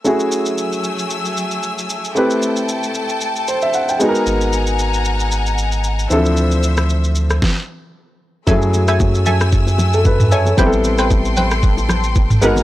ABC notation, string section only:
X:1
M:4/4
L:1/8
Q:"Swing 16ths" 1/4=114
K:Alyd
V:1 name="String section"
[F,A,ge']8 | [A,A=ga]6- [A,Aga] [f^g^a]- | [fg^a]6- [fga] [=cee']- | [=cee']4 z4 |
g8 | [A=g=c']6- [Agc'] [f^g^a] |]